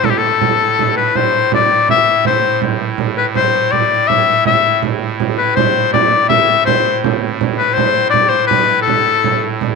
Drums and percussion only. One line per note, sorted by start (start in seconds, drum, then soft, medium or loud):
0.04 frame drum medium
0.23 frame drum soft
0.41 frame drum medium
0.79 frame drum medium
0.98 frame drum soft
1.15 frame drum medium
1.52 frame drum medium
1.71 frame drum soft
1.89 frame drum medium
2.07 frame drum soft
2.25 frame drum medium
2.62 frame drum medium
2.80 frame drum soft
2.98 frame drum medium
3.17 frame drum soft
3.36 frame drum medium
3.73 frame drum medium
3.92 frame drum soft
4.10 frame drum medium
4.28 frame drum soft
4.45 frame drum medium
4.65 frame drum soft
4.83 frame drum medium
5.20 frame drum medium
5.57 frame drum medium
5.94 frame drum medium
6.12 frame drum soft
6.30 frame drum medium
6.67 frame drum medium
7.04 frame drum medium
7.23 frame drum soft
7.41 frame drum medium
7.60 frame drum soft
7.78 frame drum medium
8.14 frame drum medium
8.32 frame drum soft
8.51 frame drum medium
8.70 frame drum soft
8.88 frame drum medium
9.06 frame drum soft
9.24 frame drum medium
9.43 frame drum soft
9.61 frame drum medium